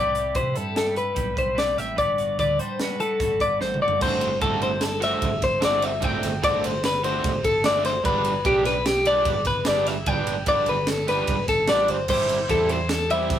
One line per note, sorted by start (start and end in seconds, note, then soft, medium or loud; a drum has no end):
0.00 0.37 C2 medium
0.00 1.53 C3 medium
0.00 0.54 G3 soft
0.00 0.54 E4 medium
0.00 0.15 G4 medium
0.00 0.35 B4 medium
0.00 0.36 D5 loud
0.15 0.75 G4 medium
0.15 closed hi-hat medium
0.35 0.54 C3 medium
0.35 0.95 B4 medium
0.35 0.57 C5 medium
0.35 kick loud
0.35 closed hi-hat medium
0.54 1.11 G2 medium
0.54 1.12 G3 medium
0.54 1.95 E4 medium
0.54 0.76 A4 medium
0.54 closed hi-hat medium
0.75 1.15 G4 medium
0.75 0.97 A4 medium
0.75 snare medium
0.75 closed hi-hat medium
0.95 1.34 B4 medium
0.95 1.38 B4 medium
0.95 closed hi-hat medium
1.14 1.35 B1 medium
1.14 2.21 G3 medium
1.14 1.76 G4 medium
1.14 kick loud
1.14 closed hi-hat medium
1.35 1.73 B1 medium
1.35 1.54 B4 medium
1.35 1.58 C5 medium
1.35 kick medium
1.35 closed hi-hat medium
1.55 1.94 C3 medium
1.55 1.95 B4 medium
1.55 1.78 D5 medium
1.55 snare loud
1.55 closed hi-hat medium
1.77 1.96 A1 loud
1.77 2.18 G4 medium
1.77 1.98 E5 medium
1.77 snare soft
1.77 closed hi-hat medium
1.96 2.16 G1 loud
1.96 3.59 G2 medium
1.96 2.38 B4 medium
1.96 2.38 D5 loud
1.96 kick medium
1.96 closed hi-hat medium
2.18 2.36 G1 medium
2.18 2.79 F#4 medium
2.18 closed hi-hat medium
2.39 2.57 D2 loud
2.39 3.00 B4 medium
2.39 2.59 D5 medium
2.39 kick loud
2.39 closed hi-hat medium
2.59 6.03 G3 medium
2.59 3.99 D4 medium
2.59 2.81 C5 medium
2.59 closed hi-hat medium
2.79 3.19 F#4 medium
2.79 3.00 B4 medium
2.79 snare loud
2.79 closed hi-hat medium
3.00 3.41 A4 medium
3.00 3.40 B4 medium
3.00 closed hi-hat medium
3.20 3.38 G1 medium
3.20 4.01 D3 medium
3.20 3.81 F#4 medium
3.20 kick loud
3.20 snare soft
3.20 closed hi-hat medium
3.40 3.59 G1 medium
3.40 3.60 B4 medium
3.40 3.61 D5 medium
3.40 kick medium
3.40 closed hi-hat medium
3.60 3.79 A1 medium
3.60 6.03 G2 medium
3.60 3.99 C5 medium
3.60 3.81 C5 medium
3.60 snare medium
3.74 mid tom medium
3.82 4.00 G1 medium
3.82 3.99 F#4 medium
3.82 4.02 D5 medium
3.88 floor tom medium
4.01 4.37 G1 loud
4.01 4.27 D3 medium
4.01 4.28 A3 medium
4.01 4.28 C4 loud
4.01 4.28 F#4 loud
4.01 4.41 C5 loud
4.01 kick loud
4.01 crash loud
4.21 ride medium
4.41 5.13 G1 medium
4.41 4.68 D3 medium
4.41 4.68 A3 loud
4.41 4.68 C4 loud
4.41 4.68 F#4 loud
4.41 4.62 A4 medium
4.41 kick loud
4.41 ride loud
4.62 4.83 C5 medium
4.62 ride medium
4.81 5.03 A4 medium
4.81 snare loud
4.81 ride loud
5.00 5.28 D3 medium
5.00 5.28 A3 medium
5.00 5.28 C4 medium
5.00 5.28 F#4 loud
5.00 5.43 E5 medium
5.00 snare soft
5.00 ride medium
5.22 5.40 G1 medium
5.22 kick loud
5.22 ride loud
5.42 5.60 G1 loud
5.42 5.63 C5 medium
5.42 kick medium
5.42 snare soft
5.42 ride medium
5.61 5.98 G1 medium
5.61 5.88 D3 medium
5.61 5.89 A3 medium
5.61 5.89 C4 loud
5.61 5.89 F#4 loud
5.61 5.84 D5 medium
5.61 snare loud
5.61 ride loud
5.82 6.04 E5 medium
5.82 ride medium
6.01 6.21 G1 medium
6.01 6.28 D3 medium
6.01 6.29 A3 loud
6.01 6.29 C4 loud
6.01 6.29 F#4 loud
6.01 6.44 G5 loud
6.01 kick loud
6.01 ride loud
6.23 6.41 G1 loud
6.23 snare soft
6.23 ride medium
6.43 6.62 G1 medium
6.43 6.69 D3 medium
6.43 6.69 A3 medium
6.43 6.70 C4 medium
6.43 6.70 F#4 loud
6.43 6.65 D5 medium
6.43 kick loud
6.43 snare soft
6.43 ride loud
6.64 7.17 G1 loud
6.64 6.84 C5 medium
6.64 ride medium
6.84 7.04 B4 medium
6.84 snare loud
6.84 ride loud
7.04 7.31 D3 medium
7.04 7.30 A3 medium
7.04 7.30 C4 medium
7.04 7.30 F#4 loud
7.04 7.45 C5 medium
7.04 ride medium
7.24 7.42 G1 medium
7.24 kick loud
7.24 snare soft
7.24 ride loud
7.44 7.98 G1 medium
7.44 7.65 A4 medium
7.44 kick medium
7.44 ride medium
7.64 7.91 D3 medium
7.64 7.91 A3 medium
7.64 7.91 C4 medium
7.64 7.91 F#4 loud
7.64 7.85 D5 medium
7.64 snare loud
7.64 ride loud
7.85 8.05 C5 loud
7.85 snare soft
7.85 ride medium
8.04 8.40 G1 loud
8.04 8.31 G3 medium
8.04 8.31 B3 loud
8.04 8.31 D4 medium
8.04 8.32 G4 loud
8.04 8.46 B4 loud
8.04 kick loud
8.04 ride loud
8.25 ride medium
8.45 9.27 B1 loud
8.45 8.72 G3 medium
8.45 8.72 B3 loud
8.45 8.72 D4 loud
8.45 8.66 G4 medium
8.45 8.72 G4 loud
8.45 kick loud
8.45 ride loud
8.65 8.86 B4 medium
8.65 snare soft
8.65 ride medium
8.86 9.06 G4 medium
8.86 snare loud
8.86 ride loud
9.05 9.33 G3 medium
9.05 9.33 B3 medium
9.05 9.32 D4 loud
9.05 9.32 G4 loud
9.05 9.47 D5 medium
9.05 ride medium
9.25 9.44 G1 medium
9.25 kick loud
9.25 ride loud
9.45 9.64 G1 medium
9.45 9.66 B4 medium
9.45 kick medium
9.45 snare soft
9.45 ride medium
9.65 10.02 G1 loud
9.65 9.93 G3 loud
9.65 9.93 B3 medium
9.65 9.93 D4 medium
9.65 9.93 G4 medium
9.65 9.87 D5 medium
9.65 snare loud
9.65 ride loud
9.86 10.08 E5 loud
9.86 snare soft
9.86 ride medium
10.06 10.25 G1 loud
10.06 10.33 G3 medium
10.06 10.33 B3 loud
10.06 10.34 D4 loud
10.06 10.34 G4 medium
10.06 10.48 G5 loud
10.06 kick loud
10.06 ride loud
10.27 10.45 G1 loud
10.27 ride medium
10.46 10.65 G1 medium
10.46 10.74 G3 medium
10.46 10.74 B3 loud
10.46 10.74 D4 loud
10.46 10.74 G4 loud
10.46 10.68 D5 medium
10.46 kick loud
10.46 ride loud
10.66 11.21 G1 loud
10.66 10.89 B4 medium
10.66 ride medium
10.87 11.08 A4 medium
10.87 snare loud
10.87 ride loud
11.08 11.35 G3 medium
11.08 11.35 B3 medium
11.08 11.34 D4 medium
11.08 11.34 G4 loud
11.08 11.49 B4 medium
11.08 snare soft
11.08 ride medium
11.27 11.46 G1 medium
11.27 kick loud
11.27 ride loud
11.48 11.66 G1 medium
11.48 11.69 A4 medium
11.48 kick medium
11.48 snare soft
11.48 ride medium
11.67 11.87 A1 medium
11.67 11.95 G3 medium
11.67 11.95 B3 medium
11.67 11.95 D4 medium
11.67 11.95 G4 loud
11.67 11.90 D5 medium
11.67 snare loud
11.67 ride loud
11.88 12.07 G1 medium
11.88 12.09 C5 medium
11.88 ride medium
12.08 12.45 G1 loud
12.08 12.36 G3 loud
12.08 12.36 C4 medium
12.08 12.36 E4 loud
12.08 12.37 G4 loud
12.08 12.50 C5 loud
12.08 kick loud
12.08 crash loud
12.29 snare soft
12.29 ride medium
12.49 13.32 E2 medium
12.49 12.76 G3 medium
12.49 12.76 C4 medium
12.49 12.76 E4 medium
12.49 12.76 G4 loud
12.49 12.70 A4 medium
12.49 kick loud
12.49 snare soft
12.49 ride loud
12.69 12.89 C5 medium
12.69 ride medium
12.89 13.10 A4 medium
12.89 snare loud
12.89 ride loud
13.10 13.37 G3 medium
13.10 13.37 C4 medium
13.10 13.37 E4 medium
13.10 13.37 G4 loud
13.10 13.39 E5 medium
13.10 ride medium
13.30 13.39 G1 medium
13.30 kick loud
13.30 snare soft
13.30 ride loud